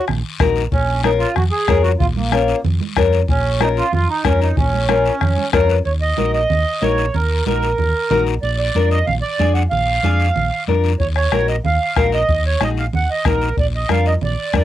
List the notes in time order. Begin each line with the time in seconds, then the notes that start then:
0.08 A#1, bombo rim, high conga, low conga, long guiro
0.40 A#1 D#4 F#4 A#4, bombo low, bombo rim, high conga, low conga, short guiro
0.56 short guiro
0.72 A#1 C#4, bombo low, long guiro
1.04 C#4 D#4 F4 A#4, bombo rim, high conga, short guiro
1.19 F4, short guiro
1.36 F2 F#4, bombo rim, high conga, low conga, long guiro
1.51 G#4
1.68 F2 C#4 F4 A#4, bombo low, bombo rim, high conga, short guiro
1.83 F#4, short guiro
1.99 A#1 F4, bombo low, high conga, low conga, long guiro
2.16 A#3, high conga
2.32 C#4 F4 A#4, bombo rim, high conga, short guiro
2.48 short guiro
2.64 F2, high conga, low conga, long guiro
2.81 high conga
2.96 F2 C#4 F4 A#4, bombo low, bombo rim, high conga, short guiro
3.12 short guiro
3.28 A#1 C#4, bombo low, high conga, long guiro
3.60 C#4 D#4 F4 A#4, bombo rim, high conga, short guiro
3.77 F4, short guiro
3.92 F2 F4, high conga, low conga, long guiro
4.09 D#4
4.24 F2 C#4 F4 A#4, bombo low, bombo rim, high conga, short guiro
4.41 D#4, short guiro
4.57 A#1 C#4, bombo low, high conga, low conga, long guiro
4.73 high conga
4.89 C#4 F4 A#4, bombo rim, high conga, short guiro
5.05 short guiro
5.21 F2, bombo rim, high conga, low conga, long guiro
5.37 high conga
5.53 F2 C#4 F4 A#4, bombo low, bombo rim, high conga, short guiro
5.69 B4, short guiro
5.85 D#2 C#5, high conga, long guiro
6.01 D#5
6.17 A#1 D#4 F#4 A#4, high conga, short guiro
6.34 D#5, short guiro
6.50 D#2, high conga, low conga, long guiro
6.81 A#1 D#4 F#4 A#4 C#5, high conga, short guiro
6.98 short guiro
7.14 D#2 A#4, high conga, low conga, long guiro
7.46 A#1 D#4 F#4 A#4, high conga, short guiro
7.62 short guiro
7.78 D#2, high conga, low conga, long guiro
8.10 A#1 D#4 F#4 A#4, high conga, low conga, short guiro
8.27 short guiro
8.42 A#1 D5, high conga, long guiro
8.58 D5
8.75 F2 D4 F4 A#4, high conga, short guiro
8.90 D#5, short guiro
9.06 A#1 F5, high conga, low conga, long guiro
9.22 D5
9.39 F2 D4 F4 G#4, high conga, short guiro
9.54 F#5, short guiro
9.70 A#1 F5, high conga, low conga, long guiro
10.03 F2 D4 F4 G#4, high conga, short guiro
10.20 short guiro
10.35 A#1, high conga, low conga, long guiro
10.67 F2 D4 F4 A#4, high conga, short guiro
10.84 short guiro
11.00 D#2 C#5, bombo low, high conga, long guiro
11.16 C#5, bombo rim
11.32 A#1 D#4 F#4 A#4, bombo rim, high conga, short guiro
11.48 D#5, short guiro
11.64 D#2 F5, high conga, low conga, long guiro
11.96 A#1 D#4 F#4 A#4, bombo low, bombo rim, high conga, short guiro
12.12 D#5, short guiro
12.29 D#2, bombo low, high conga, long guiro
12.47 C#5
12.61 A#1 D#4 F#4 G#4 D#5, bombo rim, high conga, short guiro
12.77 F5, short guiro
12.93 D#2 F#5, high conga, low conga, long guiro
13.11 D#5
13.25 A#1 D#4 F#4 A#4, bombo low, bombo rim, high conga, low conga, short guiro
13.42 short guiro
13.57 A#1 D5, bombo low, high conga, long guiro
13.76 D#5
13.89 F2 D4 F4 A#4 F5, bombo rim, high conga, short guiro
14.06 D#5, short guiro
14.21 A#1 D5, high conga, low conga, long guiro
14.53 F2 D4 F4 A#4 D5, bombo low, bombo rim, high conga, short guiro